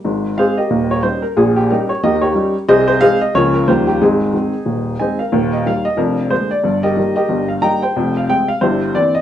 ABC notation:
X:1
M:4/4
L:1/8
Q:"Swing" 1/4=182
K:Ab
V:1 name="Upright piano"
z2 [Acf] [GBe]2 d c B | A G [EGB] d [GBe] [GBd]2 z | [Ace] c [Acf] e [FBd] B [FGc] G | [CEA]6 [cea] [Bf]- |
[K:Eb] [Bf] e f e [DFB]2 c d- | d [GBe]2 [GBe]2 f [egb] [cg]- | [cg] f g f [=EGc]2 d _e |]
V:2 name="Upright piano" clef=bass
[A,,,A,,]2 [A,CE]2 [E,,,E,,]2 [G,DE]2 | [B,,,B,,]2 [G,D]2 [E,,E,]2 [G,DE]2 | [C,,C,]2 [A,CE]2 [D,,D,F,B,]2 [E,,E,F,G,D]2 | [A,,,A,,]2 [E,A,C]2 [E,,,E,,]2 [E,A,C]2 |
[K:Eb] [E,,,E,,]2 [E,G,B,]2 [F,,,F,,]2 [D,A,B,]2 | [G,,,G,,]2 [E,G,B,]2 [G,,,G,,]2 [E,G,B,]2 | [F,,,F,,]2 [C,A,C]2 [G,,,G,,]2 [=E,B,C]2 |]